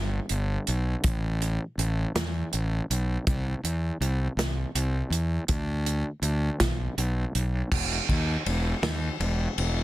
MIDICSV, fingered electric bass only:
0, 0, Header, 1, 2, 480
1, 0, Start_track
1, 0, Tempo, 742574
1, 670, Time_signature, 6, 3, 24, 8
1, 6357, End_track
2, 0, Start_track
2, 0, Title_t, "Fingered electric bass"
2, 0, Program_c, 0, 33
2, 0, Note_on_c, 0, 31, 83
2, 117, Note_off_c, 0, 31, 0
2, 194, Note_on_c, 0, 31, 81
2, 363, Note_off_c, 0, 31, 0
2, 439, Note_on_c, 0, 35, 87
2, 607, Note_off_c, 0, 35, 0
2, 675, Note_on_c, 0, 33, 89
2, 1015, Note_off_c, 0, 33, 0
2, 1148, Note_on_c, 0, 33, 82
2, 1320, Note_off_c, 0, 33, 0
2, 1390, Note_on_c, 0, 40, 86
2, 1561, Note_off_c, 0, 40, 0
2, 1638, Note_on_c, 0, 33, 85
2, 1806, Note_off_c, 0, 33, 0
2, 1876, Note_on_c, 0, 35, 85
2, 2045, Note_off_c, 0, 35, 0
2, 2114, Note_on_c, 0, 36, 92
2, 2283, Note_off_c, 0, 36, 0
2, 2350, Note_on_c, 0, 40, 81
2, 2521, Note_off_c, 0, 40, 0
2, 2588, Note_on_c, 0, 36, 79
2, 2759, Note_off_c, 0, 36, 0
2, 2823, Note_on_c, 0, 36, 91
2, 2996, Note_off_c, 0, 36, 0
2, 3069, Note_on_c, 0, 36, 85
2, 3240, Note_off_c, 0, 36, 0
2, 3297, Note_on_c, 0, 40, 87
2, 3473, Note_off_c, 0, 40, 0
2, 3547, Note_on_c, 0, 38, 98
2, 3889, Note_off_c, 0, 38, 0
2, 4018, Note_on_c, 0, 38, 85
2, 4193, Note_off_c, 0, 38, 0
2, 4270, Note_on_c, 0, 35, 86
2, 4440, Note_off_c, 0, 35, 0
2, 4508, Note_on_c, 0, 35, 85
2, 4679, Note_off_c, 0, 35, 0
2, 4750, Note_on_c, 0, 35, 93
2, 4920, Note_off_c, 0, 35, 0
2, 4988, Note_on_c, 0, 28, 86
2, 5159, Note_off_c, 0, 28, 0
2, 5233, Note_on_c, 0, 39, 85
2, 5402, Note_off_c, 0, 39, 0
2, 5468, Note_on_c, 0, 28, 95
2, 5639, Note_off_c, 0, 28, 0
2, 5703, Note_on_c, 0, 39, 85
2, 5875, Note_off_c, 0, 39, 0
2, 5945, Note_on_c, 0, 28, 93
2, 6117, Note_off_c, 0, 28, 0
2, 6190, Note_on_c, 0, 28, 94
2, 6357, Note_off_c, 0, 28, 0
2, 6357, End_track
0, 0, End_of_file